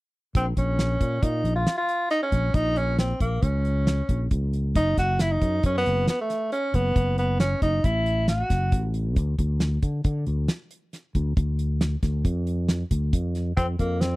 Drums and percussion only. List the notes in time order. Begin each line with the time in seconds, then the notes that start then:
0.35 kick, closed hi-hat
0.57 kick, closed hi-hat
0.79 snare, closed hi-hat
1.01 kick, closed hi-hat
1.23 kick, closed hi-hat
1.45 closed hi-hat
1.67 snare, closed hi-hat
1.89 closed hi-hat
2.10 closed hi-hat
2.32 kick, closed hi-hat
2.54 kick, closed hi-hat
2.76 closed hi-hat
2.99 snare, closed hi-hat
3.20 kick, closed hi-hat
3.42 kick, closed hi-hat
3.65 closed hi-hat
3.87 snare, closed hi-hat
4.09 kick, closed hi-hat
4.31 kick, closed hi-hat
4.53 closed hi-hat
4.75 kick, closed hi-hat
4.97 kick, snare, closed hi-hat
5.19 snare, closed hi-hat
5.41 kick, closed hi-hat
5.63 kick, closed hi-hat
5.86 snare, closed hi-hat
6.08 snare, closed hi-hat
6.30 snare, closed hi-hat
6.52 closed hi-hat
6.74 kick, closed hi-hat
6.96 kick, closed hi-hat
7.18 closed hi-hat
7.40 snare, closed hi-hat
7.62 kick, closed hi-hat
7.84 kick, closed hi-hat
8.06 closed hi-hat
8.28 snare, closed hi-hat
8.50 kick, snare, closed hi-hat
8.72 kick, closed hi-hat
8.94 closed hi-hat
9.16 kick, closed hi-hat
9.39 kick, closed hi-hat
9.60 snare, closed hi-hat
9.82 kick, closed hi-hat
10.04 kick, closed hi-hat
10.26 closed hi-hat
10.48 snare, closed hi-hat
10.71 closed hi-hat
10.93 snare, closed hi-hat
11.15 kick, closed hi-hat
11.37 kick, closed hi-hat
11.59 closed hi-hat
11.81 snare, closed hi-hat
12.03 kick, snare, closed hi-hat
12.25 kick, closed hi-hat
12.47 closed hi-hat
12.69 snare, closed hi-hat
12.91 kick, closed hi-hat
13.13 kick, closed hi-hat
13.35 snare, closed hi-hat
13.57 kick, closed hi-hat
13.79 kick, closed hi-hat
14.01 snare, closed hi-hat